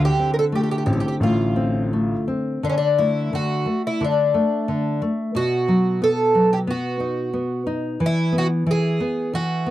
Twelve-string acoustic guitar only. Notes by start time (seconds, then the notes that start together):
0.05 G4
0.34 A#4
0.39 A4
0.55 G4
0.63 G4
0.71 G4
0.78 G4
0.86 G4
0.93 G4
1.00 G4
1.08 G4
1.23 F4
2.65 D4
2.70 C#4
2.78 D4
2.98 E4
3.35 F#4
3.87 E4
4.04 D4
5.36 F#4
6.04 A4
6.53 G4
6.70 F#4
8.06 E4
8.38 F#4
8.71 G#4
9.35 F#4